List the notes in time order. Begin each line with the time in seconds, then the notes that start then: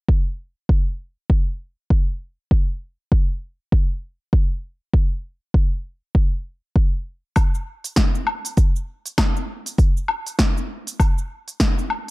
0.09 kick
0.69 kick
1.30 kick
1.90 kick
2.51 kick
3.12 kick
3.72 kick
4.33 kick
4.94 kick
5.54 kick
6.15 kick
6.76 kick
7.36 kick, open hi-hat, low woodblock, shaker
7.55 shaker
7.84 open hi-hat, shaker
7.96 kick, snare, open hi-hat, shaker
8.15 shaker
8.27 low woodblock
8.45 open hi-hat, shaker
8.57 kick, open hi-hat, shaker
8.76 shaker
9.06 open hi-hat, shaker
9.18 kick, snare, open hi-hat, low woodblock, shaker
9.37 shaker
9.66 open hi-hat, shaker
9.78 kick, open hi-hat, shaker
9.97 shaker
10.08 low woodblock
10.27 open hi-hat, shaker
10.39 kick, snare, open hi-hat, shaker
10.57 shaker
10.87 open hi-hat, shaker
11.00 kick, open hi-hat, low woodblock, shaker
11.18 shaker
11.48 open hi-hat, shaker
11.60 kick, snare, open hi-hat, shaker
11.79 shaker
11.90 low woodblock